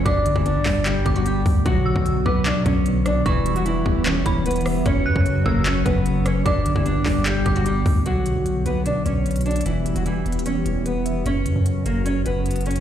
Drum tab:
HH |x-----------x-----------x-----------o-----------x-----------x-----x-----x-----------o-----------|x-----------------------x-----------------------x-----------x-----------x-----------x-----------|x-----------x-----x-----x-----------------------x-----------x-----------x--x--x--x--o-----------|x-----------------------x-----------------------x-----------x-----------x-----------x-----------|
CP |------------------------------------x-----------x-----------------------------------------------|------------------------------------------------x-----------------------------------------------|------------------------------------------------x-----------------------------------------------|------------------------------------------------x-----------------------------------------------|
SD |------------------------------------------------------------------------------------------------|------------------------------------------------------------------------------------r-----------|------------------------------------------------------------------------------------r-----------|------------------------------------------------------------------------------------r-----------|
BD |o-----------------o-----------------o-----------------------o-----------------------o-----------|o-----------------o-----------------o-----------------------o-----------------------------------|o-----------------------------------o-----------------------o-----------------------------------|o-----------------o-----------------o-----------------------o-----------------------------------|

HH |x-----------x-----------x-----------o-----------x-----------x-----x-----x-----------o-----------|x-----------x-----------x-----------x-----------x-----------x-----------x--x--x--x--x--x--x--x--|x-----------x-----x-----x-----------x---x---x---x-----------x-----------x-----------x-----------|x-----------x-----------x-----------x-----------x-----------x-----------x--x--x--x--x--x--x-----|
CP |------------------------------------x-----------x-----------------------------------------------|------------------------------------------------------------------------------------------------|------------------------------------------------------------------------------------------------|------------------------------------------------------------------------------------------------|
SD |------------------------------------------------------------------------------------------------|------------------------------------------------------------------------------------------------|------------------------------------------------------------------------------------------------|------------------------------------------------------------------------------------------------|
BD |o-----------------o-----------------o-----------------------o-----------------------o-----------|------------------------------------------------------------------------------------------------|------------------------------------------------------------------------------------------------|------------------------------------------------------------------------------------------------|